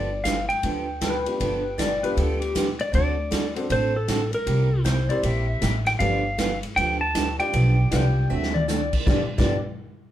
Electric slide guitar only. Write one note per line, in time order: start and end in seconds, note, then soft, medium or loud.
0.00 0.26 D5 loud
0.24 0.48 F5 loud
0.49 2.54 G5 loud
2.81 2.94 D5 medium
2.95 3.53 D5 loud
3.72 3.96 C5 medium
3.96 4.34 A4 medium
4.34 4.82 A#4 medium
5.87 5.92 G5 medium
5.99 6.58 F5 medium
6.76 7.01 G5 medium
7.01 7.39 A5 medium
7.40 7.88 G5 medium